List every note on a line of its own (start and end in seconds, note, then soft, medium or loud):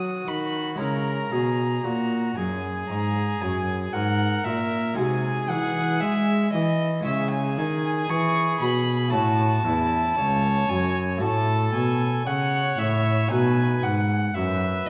0.00 0.23 F#3 medium
0.00 0.26 F#3 medium
0.00 0.73 B3 soft
0.00 0.74 D#4 soft
0.00 0.75 F#4 soft
0.00 0.81 F#4 medium
0.00 0.29 D#6 medium
0.27 0.76 D#3 medium
0.27 0.79 D#3 medium
0.27 0.79 B5 medium
0.75 1.28 G#3 medium
0.75 4.92 C#4 soft
0.75 4.93 E4 soft
0.79 1.31 C#3 medium
0.79 1.28 C#3 medium
0.79 1.34 A#4 medium
0.79 2.34 A#5 loud
1.32 1.80 B2 medium
1.32 1.84 B2 medium
1.32 1.86 G#4 medium
1.84 2.36 A#2 medium
1.84 2.33 A#2 medium
1.84 2.39 F#4 medium
2.36 2.88 F#2 medium
2.36 2.85 F#2 soft
2.36 3.96 G#4 medium
2.36 2.88 G#5 medium
2.89 3.41 G#2 medium
2.89 3.38 G#2 medium
2.89 3.42 A#5 loud
3.41 3.93 F#2 medium
3.41 3.90 F#2 medium
3.41 3.95 G#5 medium
3.93 4.44 G#2 medium
3.93 4.42 G#2 medium
3.93 4.99 A#4 medium
3.93 4.45 F#5 medium
4.44 4.96 A#2 medium
4.44 4.94 A#2 medium
4.44 4.97 E5 loud
4.94 5.48 C3 medium
4.94 6.00 G#3 medium
4.94 6.99 D#4 medium
4.94 7.00 F#4 medium
4.94 5.51 G#5 medium
4.98 5.46 C3 medium
4.98 6.77 G#4 medium
5.49 6.02 E3 medium
5.49 5.97 E3 medium
5.49 6.01 F#5 loud
6.00 6.53 G#3 medium
6.00 6.49 G#3 medium
6.00 6.52 E5 loud
6.52 7.04 E3 medium
6.52 7.02 E3 medium
6.52 7.04 D#5 medium
7.00 7.53 G#3 medium
7.00 9.08 C#4 medium
7.00 9.08 E4 medium
7.05 7.59 C#3 medium
7.05 7.53 C#3 medium
7.05 9.09 G#4 medium
7.05 7.30 E5 medium
7.30 8.10 G#5 loud
7.57 8.09 D#3 medium
7.57 8.05 D#3 medium
8.09 8.60 E3 medium
8.09 8.57 E3 medium
8.09 8.60 C#6 loud
8.60 9.15 B2 medium
8.60 9.09 B2 medium
8.60 9.12 B5 loud
9.09 11.15 A3 medium
9.09 11.16 C#4 medium
9.09 11.17 E4 medium
9.09 10.71 A5 loud
9.13 9.61 A2 medium
9.13 9.65 A2 medium
9.13 9.67 F#4 medium
9.65 10.13 E2 medium
9.65 10.17 E2 medium
9.65 10.17 E4 medium
10.17 10.65 C#2 medium
10.17 10.69 C#2 medium
10.17 11.20 C#5 medium
10.69 11.18 F#2 medium
10.69 11.24 F#2 medium
10.69 11.21 G#5 loud
11.17 13.25 A3 medium
11.17 13.26 C#4 medium
11.17 13.26 F#4 medium
11.21 11.70 A2 medium
11.21 11.74 A2 medium
11.21 12.24 A4 medium
11.21 11.73 A5 loud
11.74 12.22 B2 medium
11.74 12.25 B2 medium
11.74 12.28 G#5 loud
12.26 12.75 C#3 medium
12.26 12.78 C#3 medium
12.26 13.33 C#5 medium
12.26 12.80 F#5 loud
12.78 13.27 A2 medium
12.78 13.30 A2 medium
12.78 13.30 E5 loud
13.27 14.89 A3 medium
13.27 14.89 D#4 medium
13.27 14.89 B4 medium
13.27 13.85 G#5 loud
13.31 13.80 B2 medium
13.31 13.83 B2 medium
13.31 14.08 B4 medium
13.83 14.31 G#2 medium
13.83 14.35 G#2 medium
13.83 14.36 F#5 medium
14.34 14.84 F#2 medium
14.34 14.87 F#2 medium
14.34 14.89 B4 medium
14.34 14.88 E5 loud
14.86 14.89 D#5 loud